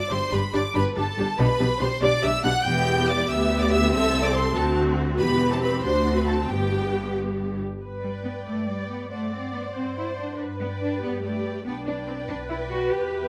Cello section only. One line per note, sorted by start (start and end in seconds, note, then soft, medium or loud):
0.11 0.19 G2 loud
0.33 0.41 G2 medium
0.54 0.62 G2 medium
0.75 0.83 G2 medium
0.97 1.05 G2 medium
1.18 1.26 G2 medium
1.39 1.47 B2 loud
1.60 1.68 B2 medium
1.81 1.89 B2 medium
2.01 2.09 B2 medium
2.23 2.31 B2 medium
2.44 2.52 B2 medium
2.65 3.25 E2 loud
3.29 3.91 D2 medium
3.92 4.56 C2 loud
4.56 5.18 D2 loud
5.20 5.84 E2 medium
5.84 6.48 D2 medium
6.49 7.58 G2 medium
8.03 8.11 G3 medium
8.24 8.32 B3 medium
8.46 8.67 A3 medium
8.67 8.89 G3 medium
8.89 9.10 B3 medium
9.11 9.32 A3 medium
9.32 9.54 C4 medium
9.54 9.62 B3 medium
9.75 9.96 C4 medium
9.97 10.05 E4 medium
10.18 10.39 D4 medium
10.60 10.68 B3 medium
10.81 11.02 D4 medium
11.02 11.23 B3 medium
11.23 11.65 A3 medium
11.66 11.74 B3 medium
11.87 11.95 D4 medium
12.08 12.16 C4 medium
12.29 12.37 D4 medium
12.50 12.58 E4 medium
12.71 12.92 F#4 medium
12.93 13.28 G4 medium